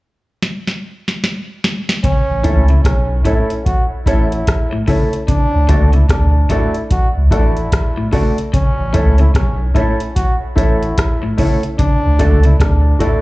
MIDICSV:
0, 0, Header, 1, 7, 480
1, 0, Start_track
1, 0, Key_signature, 3, "major"
1, 0, Tempo, 811908
1, 1205, Time_signature, 4, 2, 24, 8
1, 7812, End_track
2, 0, Start_track
2, 0, Title_t, "Clean electric guitar"
2, 0, Program_c, 0, 27
2, 1443, Note_on_c, 0, 64, 75
2, 1448, Note_on_c, 0, 69, 80
2, 1454, Note_on_c, 0, 73, 80
2, 1585, Note_off_c, 0, 64, 0
2, 1588, Note_off_c, 0, 69, 0
2, 1591, Note_off_c, 0, 73, 0
2, 1919, Note_on_c, 0, 64, 74
2, 1928, Note_on_c, 0, 69, 83
2, 1930, Note_on_c, 0, 73, 88
2, 2063, Note_off_c, 0, 64, 0
2, 2068, Note_off_c, 0, 69, 0
2, 2069, Note_off_c, 0, 73, 0
2, 2402, Note_on_c, 0, 64, 80
2, 2407, Note_on_c, 0, 69, 92
2, 2412, Note_on_c, 0, 73, 99
2, 2545, Note_off_c, 0, 64, 0
2, 2547, Note_off_c, 0, 69, 0
2, 2550, Note_off_c, 0, 73, 0
2, 2884, Note_on_c, 0, 64, 80
2, 2891, Note_on_c, 0, 69, 84
2, 2896, Note_on_c, 0, 73, 89
2, 3026, Note_off_c, 0, 64, 0
2, 3029, Note_off_c, 0, 69, 0
2, 3032, Note_off_c, 0, 73, 0
2, 3362, Note_on_c, 0, 66, 78
2, 3366, Note_on_c, 0, 69, 92
2, 3371, Note_on_c, 0, 74, 94
2, 3505, Note_off_c, 0, 66, 0
2, 3507, Note_off_c, 0, 69, 0
2, 3510, Note_off_c, 0, 74, 0
2, 3847, Note_on_c, 0, 66, 78
2, 3852, Note_on_c, 0, 69, 79
2, 3857, Note_on_c, 0, 74, 84
2, 3988, Note_off_c, 0, 66, 0
2, 3991, Note_off_c, 0, 69, 0
2, 3993, Note_off_c, 0, 74, 0
2, 4323, Note_on_c, 0, 66, 90
2, 4331, Note_on_c, 0, 69, 96
2, 4335, Note_on_c, 0, 74, 89
2, 4466, Note_off_c, 0, 66, 0
2, 4470, Note_off_c, 0, 69, 0
2, 4472, Note_off_c, 0, 74, 0
2, 4805, Note_on_c, 0, 66, 83
2, 4808, Note_on_c, 0, 69, 85
2, 4814, Note_on_c, 0, 74, 83
2, 4947, Note_off_c, 0, 66, 0
2, 4949, Note_off_c, 0, 69, 0
2, 4952, Note_off_c, 0, 74, 0
2, 5283, Note_on_c, 0, 64, 71
2, 5290, Note_on_c, 0, 69, 81
2, 5294, Note_on_c, 0, 73, 85
2, 5426, Note_off_c, 0, 64, 0
2, 5430, Note_off_c, 0, 69, 0
2, 5432, Note_off_c, 0, 73, 0
2, 5767, Note_on_c, 0, 64, 84
2, 5773, Note_on_c, 0, 69, 91
2, 5776, Note_on_c, 0, 73, 95
2, 5908, Note_off_c, 0, 64, 0
2, 5911, Note_off_c, 0, 69, 0
2, 5913, Note_off_c, 0, 73, 0
2, 6246, Note_on_c, 0, 64, 87
2, 6251, Note_on_c, 0, 69, 85
2, 6256, Note_on_c, 0, 73, 87
2, 6388, Note_off_c, 0, 64, 0
2, 6391, Note_off_c, 0, 69, 0
2, 6393, Note_off_c, 0, 73, 0
2, 6727, Note_on_c, 0, 64, 84
2, 6733, Note_on_c, 0, 69, 88
2, 6736, Note_on_c, 0, 73, 88
2, 6869, Note_off_c, 0, 64, 0
2, 6872, Note_off_c, 0, 69, 0
2, 6873, Note_off_c, 0, 73, 0
2, 7206, Note_on_c, 0, 66, 79
2, 7212, Note_on_c, 0, 69, 85
2, 7215, Note_on_c, 0, 74, 102
2, 7348, Note_off_c, 0, 66, 0
2, 7351, Note_off_c, 0, 69, 0
2, 7353, Note_off_c, 0, 74, 0
2, 7681, Note_on_c, 0, 66, 78
2, 7688, Note_on_c, 0, 69, 83
2, 7691, Note_on_c, 0, 74, 94
2, 7812, Note_off_c, 0, 66, 0
2, 7812, Note_off_c, 0, 69, 0
2, 7812, Note_off_c, 0, 74, 0
2, 7812, End_track
3, 0, Start_track
3, 0, Title_t, "Trombone"
3, 0, Program_c, 1, 57
3, 1205, Note_on_c, 1, 61, 108
3, 1569, Note_off_c, 1, 61, 0
3, 1591, Note_on_c, 1, 64, 82
3, 1666, Note_off_c, 1, 64, 0
3, 1678, Note_on_c, 1, 61, 84
3, 1873, Note_off_c, 1, 61, 0
3, 1914, Note_on_c, 1, 64, 85
3, 2110, Note_off_c, 1, 64, 0
3, 2152, Note_on_c, 1, 66, 91
3, 2275, Note_off_c, 1, 66, 0
3, 2399, Note_on_c, 1, 64, 92
3, 2859, Note_off_c, 1, 64, 0
3, 3119, Note_on_c, 1, 62, 108
3, 3486, Note_off_c, 1, 62, 0
3, 3512, Note_on_c, 1, 64, 81
3, 3587, Note_off_c, 1, 64, 0
3, 3605, Note_on_c, 1, 62, 81
3, 3849, Note_on_c, 1, 64, 78
3, 3858, Note_off_c, 1, 62, 0
3, 4040, Note_off_c, 1, 64, 0
3, 4084, Note_on_c, 1, 66, 96
3, 4203, Note_off_c, 1, 66, 0
3, 4326, Note_on_c, 1, 64, 86
3, 4783, Note_off_c, 1, 64, 0
3, 5050, Note_on_c, 1, 61, 101
3, 5413, Note_off_c, 1, 61, 0
3, 5435, Note_on_c, 1, 64, 82
3, 5509, Note_off_c, 1, 64, 0
3, 5521, Note_on_c, 1, 61, 79
3, 5715, Note_off_c, 1, 61, 0
3, 5771, Note_on_c, 1, 64, 75
3, 5962, Note_off_c, 1, 64, 0
3, 6004, Note_on_c, 1, 66, 101
3, 6123, Note_off_c, 1, 66, 0
3, 6245, Note_on_c, 1, 64, 89
3, 6703, Note_off_c, 1, 64, 0
3, 6964, Note_on_c, 1, 62, 105
3, 7331, Note_off_c, 1, 62, 0
3, 7355, Note_on_c, 1, 64, 86
3, 7429, Note_off_c, 1, 64, 0
3, 7446, Note_on_c, 1, 62, 80
3, 7689, Note_on_c, 1, 64, 84
3, 7697, Note_off_c, 1, 62, 0
3, 7812, Note_off_c, 1, 64, 0
3, 7812, End_track
4, 0, Start_track
4, 0, Title_t, "Upright piano"
4, 0, Program_c, 2, 0
4, 1438, Note_on_c, 2, 57, 84
4, 1441, Note_on_c, 2, 61, 84
4, 1441, Note_on_c, 2, 64, 85
4, 1444, Note_on_c, 2, 69, 90
4, 1550, Note_off_c, 2, 57, 0
4, 1551, Note_off_c, 2, 61, 0
4, 1551, Note_off_c, 2, 64, 0
4, 1553, Note_off_c, 2, 69, 0
4, 1830, Note_on_c, 2, 69, 26
4, 1831, Note_on_c, 2, 64, 25
4, 1869, Note_off_c, 2, 64, 0
4, 1869, Note_off_c, 2, 69, 0
4, 1921, Note_on_c, 2, 57, 86
4, 1922, Note_on_c, 2, 61, 83
4, 1925, Note_on_c, 2, 64, 76
4, 1927, Note_on_c, 2, 69, 92
4, 2031, Note_off_c, 2, 57, 0
4, 2032, Note_off_c, 2, 61, 0
4, 2033, Note_off_c, 2, 64, 0
4, 2034, Note_off_c, 2, 69, 0
4, 2402, Note_on_c, 2, 57, 89
4, 2402, Note_on_c, 2, 61, 87
4, 2405, Note_on_c, 2, 64, 85
4, 2406, Note_on_c, 2, 69, 107
4, 2512, Note_off_c, 2, 57, 0
4, 2512, Note_off_c, 2, 61, 0
4, 2514, Note_off_c, 2, 64, 0
4, 2514, Note_off_c, 2, 69, 0
4, 2879, Note_on_c, 2, 57, 84
4, 2883, Note_on_c, 2, 61, 80
4, 2885, Note_on_c, 2, 64, 77
4, 2888, Note_on_c, 2, 69, 90
4, 2990, Note_off_c, 2, 57, 0
4, 2992, Note_off_c, 2, 61, 0
4, 2994, Note_off_c, 2, 64, 0
4, 2995, Note_off_c, 2, 69, 0
4, 3360, Note_on_c, 2, 57, 89
4, 3363, Note_on_c, 2, 62, 84
4, 3365, Note_on_c, 2, 66, 81
4, 3368, Note_on_c, 2, 69, 96
4, 3471, Note_off_c, 2, 57, 0
4, 3473, Note_off_c, 2, 62, 0
4, 3473, Note_off_c, 2, 66, 0
4, 3475, Note_off_c, 2, 69, 0
4, 3752, Note_on_c, 2, 69, 27
4, 3754, Note_on_c, 2, 66, 24
4, 3790, Note_off_c, 2, 69, 0
4, 3791, Note_off_c, 2, 66, 0
4, 3840, Note_on_c, 2, 57, 93
4, 3841, Note_on_c, 2, 62, 86
4, 3844, Note_on_c, 2, 66, 78
4, 3847, Note_on_c, 2, 69, 93
4, 3951, Note_off_c, 2, 57, 0
4, 3952, Note_off_c, 2, 62, 0
4, 3953, Note_off_c, 2, 66, 0
4, 3955, Note_off_c, 2, 69, 0
4, 4320, Note_on_c, 2, 57, 87
4, 4322, Note_on_c, 2, 62, 86
4, 4323, Note_on_c, 2, 66, 89
4, 4326, Note_on_c, 2, 69, 101
4, 4432, Note_off_c, 2, 57, 0
4, 4432, Note_off_c, 2, 62, 0
4, 4433, Note_off_c, 2, 66, 0
4, 4435, Note_off_c, 2, 69, 0
4, 4799, Note_on_c, 2, 57, 87
4, 4802, Note_on_c, 2, 62, 76
4, 4804, Note_on_c, 2, 66, 79
4, 4805, Note_on_c, 2, 69, 95
4, 4911, Note_off_c, 2, 57, 0
4, 4913, Note_off_c, 2, 62, 0
4, 4914, Note_off_c, 2, 66, 0
4, 4914, Note_off_c, 2, 69, 0
4, 5279, Note_on_c, 2, 57, 93
4, 5282, Note_on_c, 2, 61, 81
4, 5285, Note_on_c, 2, 64, 82
4, 5285, Note_on_c, 2, 69, 103
4, 5391, Note_off_c, 2, 57, 0
4, 5393, Note_off_c, 2, 61, 0
4, 5394, Note_off_c, 2, 64, 0
4, 5394, Note_off_c, 2, 69, 0
4, 5670, Note_on_c, 2, 69, 29
4, 5671, Note_on_c, 2, 64, 27
4, 5709, Note_off_c, 2, 69, 0
4, 5710, Note_off_c, 2, 64, 0
4, 5760, Note_on_c, 2, 57, 88
4, 5761, Note_on_c, 2, 61, 87
4, 5763, Note_on_c, 2, 64, 83
4, 5768, Note_on_c, 2, 69, 97
4, 5872, Note_off_c, 2, 57, 0
4, 5873, Note_off_c, 2, 61, 0
4, 5874, Note_off_c, 2, 64, 0
4, 5876, Note_off_c, 2, 69, 0
4, 6241, Note_on_c, 2, 57, 99
4, 6243, Note_on_c, 2, 61, 82
4, 6244, Note_on_c, 2, 64, 83
4, 6249, Note_on_c, 2, 69, 95
4, 6353, Note_off_c, 2, 57, 0
4, 6354, Note_off_c, 2, 61, 0
4, 6354, Note_off_c, 2, 64, 0
4, 6356, Note_off_c, 2, 69, 0
4, 6723, Note_on_c, 2, 57, 83
4, 6725, Note_on_c, 2, 61, 80
4, 6729, Note_on_c, 2, 64, 73
4, 6730, Note_on_c, 2, 69, 90
4, 6834, Note_off_c, 2, 57, 0
4, 6835, Note_off_c, 2, 61, 0
4, 6837, Note_off_c, 2, 64, 0
4, 6838, Note_off_c, 2, 69, 0
4, 7207, Note_on_c, 2, 57, 94
4, 7208, Note_on_c, 2, 62, 84
4, 7211, Note_on_c, 2, 66, 83
4, 7213, Note_on_c, 2, 69, 103
4, 7316, Note_off_c, 2, 57, 0
4, 7316, Note_off_c, 2, 62, 0
4, 7318, Note_off_c, 2, 66, 0
4, 7319, Note_off_c, 2, 69, 0
4, 7598, Note_on_c, 2, 66, 24
4, 7598, Note_on_c, 2, 69, 26
4, 7634, Note_off_c, 2, 66, 0
4, 7634, Note_off_c, 2, 69, 0
4, 7688, Note_on_c, 2, 57, 82
4, 7688, Note_on_c, 2, 62, 86
4, 7691, Note_on_c, 2, 66, 80
4, 7694, Note_on_c, 2, 69, 94
4, 7797, Note_off_c, 2, 57, 0
4, 7797, Note_off_c, 2, 62, 0
4, 7798, Note_off_c, 2, 66, 0
4, 7800, Note_off_c, 2, 69, 0
4, 7812, End_track
5, 0, Start_track
5, 0, Title_t, "Clean electric guitar"
5, 0, Program_c, 3, 27
5, 1209, Note_on_c, 3, 49, 73
5, 1298, Note_off_c, 3, 49, 0
5, 1448, Note_on_c, 3, 52, 75
5, 1537, Note_off_c, 3, 52, 0
5, 1597, Note_on_c, 3, 49, 69
5, 1653, Note_off_c, 3, 49, 0
5, 1689, Note_on_c, 3, 47, 74
5, 1778, Note_off_c, 3, 47, 0
5, 1926, Note_on_c, 3, 45, 89
5, 2016, Note_off_c, 3, 45, 0
5, 2794, Note_on_c, 3, 45, 70
5, 2851, Note_off_c, 3, 45, 0
5, 2883, Note_on_c, 3, 49, 79
5, 2974, Note_off_c, 3, 49, 0
5, 3123, Note_on_c, 3, 49, 78
5, 3214, Note_off_c, 3, 49, 0
5, 3363, Note_on_c, 3, 50, 73
5, 3454, Note_off_c, 3, 50, 0
5, 3510, Note_on_c, 3, 49, 69
5, 3568, Note_off_c, 3, 49, 0
5, 3605, Note_on_c, 3, 47, 72
5, 3695, Note_off_c, 3, 47, 0
5, 3847, Note_on_c, 3, 45, 85
5, 3937, Note_off_c, 3, 45, 0
5, 4714, Note_on_c, 3, 45, 68
5, 4771, Note_off_c, 3, 45, 0
5, 4806, Note_on_c, 3, 49, 72
5, 4897, Note_off_c, 3, 49, 0
5, 5045, Note_on_c, 3, 49, 74
5, 5136, Note_off_c, 3, 49, 0
5, 5286, Note_on_c, 3, 52, 79
5, 5377, Note_off_c, 3, 52, 0
5, 5435, Note_on_c, 3, 49, 69
5, 5492, Note_off_c, 3, 49, 0
5, 5530, Note_on_c, 3, 47, 76
5, 5620, Note_off_c, 3, 47, 0
5, 5770, Note_on_c, 3, 45, 83
5, 5859, Note_off_c, 3, 45, 0
5, 6639, Note_on_c, 3, 45, 71
5, 6695, Note_off_c, 3, 45, 0
5, 6735, Note_on_c, 3, 49, 78
5, 6823, Note_off_c, 3, 49, 0
5, 6973, Note_on_c, 3, 49, 75
5, 7062, Note_off_c, 3, 49, 0
5, 7217, Note_on_c, 3, 50, 73
5, 7305, Note_off_c, 3, 50, 0
5, 7361, Note_on_c, 3, 49, 66
5, 7416, Note_off_c, 3, 49, 0
5, 7455, Note_on_c, 3, 47, 75
5, 7543, Note_off_c, 3, 47, 0
5, 7694, Note_on_c, 3, 45, 82
5, 7783, Note_off_c, 3, 45, 0
5, 7812, End_track
6, 0, Start_track
6, 0, Title_t, "Sub bass"
6, 0, Program_c, 4, 38
6, 1359, Note_on_c, 4, 33, 96
6, 1438, Note_off_c, 4, 33, 0
6, 1449, Note_on_c, 4, 37, 94
6, 1658, Note_off_c, 4, 37, 0
6, 1687, Note_on_c, 4, 35, 95
6, 1897, Note_off_c, 4, 35, 0
6, 2404, Note_on_c, 4, 33, 84
6, 2616, Note_off_c, 4, 33, 0
6, 3279, Note_on_c, 4, 38, 91
6, 3358, Note_off_c, 4, 38, 0
6, 3369, Note_on_c, 4, 37, 86
6, 3579, Note_off_c, 4, 37, 0
6, 3606, Note_on_c, 4, 38, 99
6, 3817, Note_off_c, 4, 38, 0
6, 4238, Note_on_c, 4, 37, 94
6, 4318, Note_off_c, 4, 37, 0
6, 4324, Note_on_c, 4, 33, 94
6, 4536, Note_off_c, 4, 33, 0
6, 5200, Note_on_c, 4, 33, 97
6, 5279, Note_off_c, 4, 33, 0
6, 5291, Note_on_c, 4, 37, 97
6, 5500, Note_off_c, 4, 37, 0
6, 5527, Note_on_c, 4, 35, 94
6, 5738, Note_off_c, 4, 35, 0
6, 6251, Note_on_c, 4, 33, 90
6, 6460, Note_off_c, 4, 33, 0
6, 7128, Note_on_c, 4, 38, 95
6, 7204, Note_off_c, 4, 38, 0
6, 7215, Note_on_c, 4, 37, 95
6, 7423, Note_off_c, 4, 37, 0
6, 7454, Note_on_c, 4, 38, 103
6, 7662, Note_off_c, 4, 38, 0
6, 7812, End_track
7, 0, Start_track
7, 0, Title_t, "Drums"
7, 251, Note_on_c, 9, 38, 53
7, 310, Note_off_c, 9, 38, 0
7, 399, Note_on_c, 9, 38, 56
7, 458, Note_off_c, 9, 38, 0
7, 638, Note_on_c, 9, 38, 64
7, 697, Note_off_c, 9, 38, 0
7, 731, Note_on_c, 9, 38, 85
7, 790, Note_off_c, 9, 38, 0
7, 971, Note_on_c, 9, 38, 107
7, 1030, Note_off_c, 9, 38, 0
7, 1118, Note_on_c, 9, 38, 93
7, 1177, Note_off_c, 9, 38, 0
7, 1204, Note_on_c, 9, 36, 117
7, 1205, Note_on_c, 9, 42, 74
7, 1263, Note_off_c, 9, 36, 0
7, 1264, Note_off_c, 9, 42, 0
7, 1444, Note_on_c, 9, 42, 75
7, 1445, Note_on_c, 9, 36, 94
7, 1503, Note_off_c, 9, 42, 0
7, 1504, Note_off_c, 9, 36, 0
7, 1586, Note_on_c, 9, 42, 43
7, 1646, Note_off_c, 9, 42, 0
7, 1682, Note_on_c, 9, 36, 105
7, 1685, Note_on_c, 9, 42, 92
7, 1691, Note_on_c, 9, 37, 115
7, 1741, Note_off_c, 9, 36, 0
7, 1744, Note_off_c, 9, 42, 0
7, 1750, Note_off_c, 9, 37, 0
7, 1920, Note_on_c, 9, 36, 86
7, 1923, Note_on_c, 9, 42, 65
7, 1980, Note_off_c, 9, 36, 0
7, 1982, Note_off_c, 9, 42, 0
7, 2070, Note_on_c, 9, 42, 51
7, 2129, Note_off_c, 9, 42, 0
7, 2164, Note_on_c, 9, 36, 103
7, 2166, Note_on_c, 9, 42, 79
7, 2223, Note_off_c, 9, 36, 0
7, 2225, Note_off_c, 9, 42, 0
7, 2400, Note_on_c, 9, 36, 87
7, 2406, Note_on_c, 9, 42, 72
7, 2459, Note_off_c, 9, 36, 0
7, 2465, Note_off_c, 9, 42, 0
7, 2555, Note_on_c, 9, 42, 46
7, 2614, Note_off_c, 9, 42, 0
7, 2644, Note_on_c, 9, 42, 103
7, 2645, Note_on_c, 9, 36, 107
7, 2651, Note_on_c, 9, 37, 125
7, 2703, Note_off_c, 9, 42, 0
7, 2705, Note_off_c, 9, 36, 0
7, 2710, Note_off_c, 9, 37, 0
7, 2883, Note_on_c, 9, 36, 85
7, 2883, Note_on_c, 9, 46, 72
7, 2942, Note_off_c, 9, 46, 0
7, 2943, Note_off_c, 9, 36, 0
7, 3033, Note_on_c, 9, 42, 56
7, 3092, Note_off_c, 9, 42, 0
7, 3122, Note_on_c, 9, 36, 109
7, 3123, Note_on_c, 9, 42, 74
7, 3181, Note_off_c, 9, 36, 0
7, 3182, Note_off_c, 9, 42, 0
7, 3362, Note_on_c, 9, 42, 78
7, 3364, Note_on_c, 9, 36, 85
7, 3422, Note_off_c, 9, 42, 0
7, 3423, Note_off_c, 9, 36, 0
7, 3506, Note_on_c, 9, 42, 42
7, 3565, Note_off_c, 9, 42, 0
7, 3601, Note_on_c, 9, 36, 113
7, 3603, Note_on_c, 9, 42, 83
7, 3609, Note_on_c, 9, 37, 116
7, 3660, Note_off_c, 9, 36, 0
7, 3662, Note_off_c, 9, 42, 0
7, 3668, Note_off_c, 9, 37, 0
7, 3840, Note_on_c, 9, 36, 83
7, 3841, Note_on_c, 9, 42, 69
7, 3899, Note_off_c, 9, 36, 0
7, 3900, Note_off_c, 9, 42, 0
7, 3987, Note_on_c, 9, 42, 51
7, 4046, Note_off_c, 9, 42, 0
7, 4082, Note_on_c, 9, 42, 76
7, 4083, Note_on_c, 9, 36, 110
7, 4142, Note_off_c, 9, 36, 0
7, 4142, Note_off_c, 9, 42, 0
7, 4321, Note_on_c, 9, 36, 93
7, 4327, Note_on_c, 9, 42, 69
7, 4380, Note_off_c, 9, 36, 0
7, 4387, Note_off_c, 9, 42, 0
7, 4473, Note_on_c, 9, 42, 48
7, 4532, Note_off_c, 9, 42, 0
7, 4565, Note_on_c, 9, 42, 96
7, 4566, Note_on_c, 9, 36, 112
7, 4572, Note_on_c, 9, 37, 118
7, 4624, Note_off_c, 9, 42, 0
7, 4625, Note_off_c, 9, 36, 0
7, 4631, Note_off_c, 9, 37, 0
7, 4804, Note_on_c, 9, 46, 75
7, 4805, Note_on_c, 9, 36, 92
7, 4863, Note_off_c, 9, 46, 0
7, 4865, Note_off_c, 9, 36, 0
7, 4955, Note_on_c, 9, 42, 53
7, 5014, Note_off_c, 9, 42, 0
7, 5046, Note_on_c, 9, 36, 110
7, 5047, Note_on_c, 9, 42, 74
7, 5105, Note_off_c, 9, 36, 0
7, 5106, Note_off_c, 9, 42, 0
7, 5285, Note_on_c, 9, 42, 81
7, 5287, Note_on_c, 9, 36, 94
7, 5344, Note_off_c, 9, 42, 0
7, 5346, Note_off_c, 9, 36, 0
7, 5428, Note_on_c, 9, 42, 46
7, 5487, Note_off_c, 9, 42, 0
7, 5524, Note_on_c, 9, 36, 111
7, 5527, Note_on_c, 9, 42, 86
7, 5533, Note_on_c, 9, 37, 122
7, 5583, Note_off_c, 9, 36, 0
7, 5586, Note_off_c, 9, 42, 0
7, 5592, Note_off_c, 9, 37, 0
7, 5764, Note_on_c, 9, 36, 89
7, 5769, Note_on_c, 9, 42, 66
7, 5824, Note_off_c, 9, 36, 0
7, 5828, Note_off_c, 9, 42, 0
7, 5913, Note_on_c, 9, 42, 51
7, 5973, Note_off_c, 9, 42, 0
7, 6008, Note_on_c, 9, 36, 101
7, 6008, Note_on_c, 9, 42, 89
7, 6067, Note_off_c, 9, 36, 0
7, 6067, Note_off_c, 9, 42, 0
7, 6245, Note_on_c, 9, 36, 90
7, 6254, Note_on_c, 9, 42, 69
7, 6305, Note_off_c, 9, 36, 0
7, 6313, Note_off_c, 9, 42, 0
7, 6400, Note_on_c, 9, 42, 46
7, 6459, Note_off_c, 9, 42, 0
7, 6489, Note_on_c, 9, 42, 100
7, 6490, Note_on_c, 9, 36, 103
7, 6495, Note_on_c, 9, 37, 116
7, 6548, Note_off_c, 9, 42, 0
7, 6549, Note_off_c, 9, 36, 0
7, 6555, Note_off_c, 9, 37, 0
7, 6729, Note_on_c, 9, 46, 78
7, 6730, Note_on_c, 9, 36, 88
7, 6788, Note_off_c, 9, 46, 0
7, 6789, Note_off_c, 9, 36, 0
7, 6877, Note_on_c, 9, 42, 55
7, 6936, Note_off_c, 9, 42, 0
7, 6969, Note_on_c, 9, 36, 107
7, 6970, Note_on_c, 9, 42, 73
7, 7028, Note_off_c, 9, 36, 0
7, 7029, Note_off_c, 9, 42, 0
7, 7209, Note_on_c, 9, 42, 74
7, 7210, Note_on_c, 9, 36, 92
7, 7268, Note_off_c, 9, 42, 0
7, 7269, Note_off_c, 9, 36, 0
7, 7351, Note_on_c, 9, 42, 46
7, 7410, Note_off_c, 9, 42, 0
7, 7447, Note_on_c, 9, 36, 103
7, 7452, Note_on_c, 9, 42, 82
7, 7458, Note_on_c, 9, 37, 106
7, 7507, Note_off_c, 9, 36, 0
7, 7511, Note_off_c, 9, 42, 0
7, 7517, Note_off_c, 9, 37, 0
7, 7686, Note_on_c, 9, 36, 84
7, 7688, Note_on_c, 9, 42, 62
7, 7746, Note_off_c, 9, 36, 0
7, 7747, Note_off_c, 9, 42, 0
7, 7812, End_track
0, 0, End_of_file